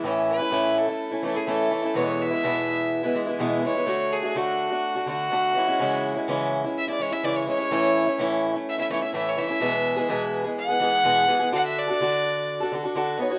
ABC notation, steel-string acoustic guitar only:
X:1
M:4/4
L:1/16
Q:1/4=125
K:Alyd
V:1 name="Steel-string acoustic guitar"
[A,,E,A,CE]3 [A,CE] [A,,E,A,CE]3 [A,CE]2 [A,CE] [E,A,CE] [A,CE] [A,,E,A,CE]2 [E,A,CE] [A,CE] | [E,,B,,E,G,B,E]3 [E,G,B,E] [E,,B,,E,G,B,E]4- [E,,B,,E,G,B,E] [E,G,B,E] [E,G,B,E] [E,G,B,E] [E,,B,,E,G,B,E]2 [E,G,B,E] [E,G,B,E] | [=D,A,=DF]3 [A,DF] [D,A,DF]3 [A,DF]2 [A,DF] [D,A,DF]2 [D,A,DF]2 [E,G,CE] [G,CE] | [C,E,G,CE]3 [G,CE] [C,E,G,CE]3 [G,CE]2 [G,CE] [E,G,CE] [G,CE] [C,E,G,CE]2 [E,G,CE] [G,CE] |
[A,,E,A,CE]3 [A,CE] [A,,E,A,CE]3 [A,CE]2 [A,CE] [E,A,CE] [A,CE] [A,,E,A,CE]2 [E,A,CE] [A,CE] | [E,,B,,E,G,B,G]3 [E,G,B,G] [E,,B,,E,G,B,G]3 [E,G,B,G]2 [E,G,B,G] [E,G,B,G]2 [E,,B,,E,G,B,G]2 [E,G,B,G] [E,G,B,G] | [=D,=DFA]3 [DFA] [D,DFA]4- [D,DFA] [DFA] [D,DFA] [DFA] [D,DFA]2 [B,^DFc] [DFc] |]